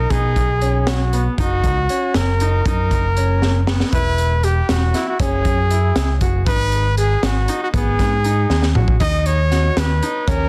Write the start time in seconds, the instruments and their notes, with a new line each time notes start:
Already playing: trumpet A#4
0.10 picked electric bass B2, grand piano D#4, trumpet G#4, kick, closed hi-hat
0.36 picked electric bass B1, kick, closed hi-hat
0.61 grand piano C#4, closed hi-hat
0.80 trumpet G#4
0.87 trumpet F#4, snare, closed hi-hat
1.13 grand piano B3, closed hi-hat
1.38 picked electric bass F#1, grand piano D#4, trumpet F#4, kick, closed hi-hat
1.64 picked electric bass C#2, kick, closed hi-hat
1.89 grand piano C#4, closed hi-hat
2.14 picked electric bass F#1, trumpet A#4, snare, closed hi-hat
2.40 grand piano D#4, closed hi-hat
2.66 picked electric bass F#2, grand piano D#4, trumpet A#4, kick, closed hi-hat
2.91 picked electric bass F#1, kick, closed hi-hat
3.17 grand piano C#4, closed hi-hat
3.42 snare
3.67 grand piano B3, snare
3.80 snare
3.92 picked electric bass E1, grand piano E4, trumpet B4, kick, closed hi-hat
4.18 closed hi-hat
4.43 grand piano G4, trumpet G4, closed hi-hat
4.69 picked electric bass E1, trumpet F#4, snare, closed hi-hat
4.94 grand piano E4, snare, closed hi-hat
5.09 trumpet F#4
5.19 picked electric bass F#1, grand piano C#4, trumpet G#4, kick, closed hi-hat
5.45 picked electric bass F#2, kick, closed hi-hat
5.70 grand piano E4, closed hi-hat
5.96 picked electric bass C#2, snare, closed hi-hat
6.21 picked electric bass F#1, grand piano F#4, kick, closed hi-hat
6.46 picked electric bass G#1, grand piano D#4, trumpet B4, kick, closed hi-hat
6.72 closed hi-hat
6.97 grand piano G#4, trumpet G#4, closed hi-hat
7.23 picked electric bass G#1, trumpet F#4, snare, closed hi-hat
7.48 grand piano D#4, closed hi-hat
7.63 trumpet F#4
7.74 picked electric bass G#1, grand piano B3, trumpet G#4, kick, closed hi-hat
7.99 picked electric bass G#2, kick, snare, closed hi-hat
8.24 grand piano D#4, closed hi-hat
8.50 picked electric bass D#2, snare
8.62 snare
8.75 picked electric bass A#1, grand piano F#4, mid tom
8.88 kick
9.00 picked electric bass D#2, grand piano D#4, trumpet D#5, kick, closed hi-hat
9.26 trumpet C#5, closed hi-hat
9.51 grand piano F#4, snare, closed hi-hat
9.77 picked electric bass D#2, trumpet B4, snare, closed hi-hat
10.02 grand piano D#4, closed hi-hat
10.28 picked electric bass D#2, grand piano C#4, trumpet A#4, kick, closed hi-hat